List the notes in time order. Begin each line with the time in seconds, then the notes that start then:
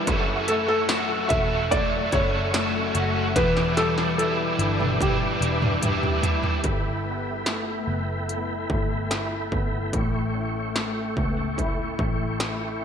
Already playing: G3 D4 E4
0.07 F#1 F#2 F#3 A3 C#4 E4 A4 E5 F#5 C#6, kick, closed hi-hat
0.47 A3 C#4 E4 A4, closed hi-hat
0.68 A4
0.88 F#3 A3 C#4 E4 F#4, snare, closed hi-hat, tambourine
1.29 E1 C#4 E4 E5, kick, closed hi-hat
1.34 A3
1.71 F#3 A3 E4 D5, kick, closed hi-hat
2.12 F#1 A3 C#4 E4 C#5, kick, closed hi-hat
2.53 F#3 A3 C#4 E4, snare, closed hi-hat, tambourine
2.94 F#1 A3 C#4 E4 F#4, closed hi-hat
3.35 E1 E2 B2 E3 G3 D4 E4 B4 G5 D6, kick, snare, closed hi-hat
3.57 snare
3.77 G3 D4 E4 A4, snare, closed hi-hat
3.81 E3
3.98 snare
4.18 E2 B2 E3 G3 D4 E4 A4, closed hi-hat
4.58 G1 E3 G3 D4 E4, closed hi-hat
4.80 mid tom
4.99 E3 G3 D4 E4 G4, kick, closed hi-hat, mid tom
5.40 E1 E3 G3 D4 E4, closed hi-hat
5.62 mid tom
5.81 E2 B2 E3 G3 D4 E4, closed hi-hat, mid tom
6.03 floor tom
6.22 E3 G3 D4 E4, closed hi-hat, floor tom
6.43 floor tom
6.64 G1 A4 E5 G5 B5, kick, closed hi-hat
7.05 B3
7.46 A3, snare, closed hi-hat
7.87 F#1 B3
8.29 E4, closed hi-hat
8.70 G1 A3, kick
9.11 E4, snare, closed hi-hat
9.52 G1 B3, kick
9.92 A1 A2 E5 C#6, kick, closed hi-hat
10.34 C#4
10.75 A3, snare, closed hi-hat
11.16 C#2 B3, kick
11.37 C#4
11.57 E4, kick, closed hi-hat
11.99 A1 A3, kick
12.40 E4, snare, closed hi-hat
12.81 C#4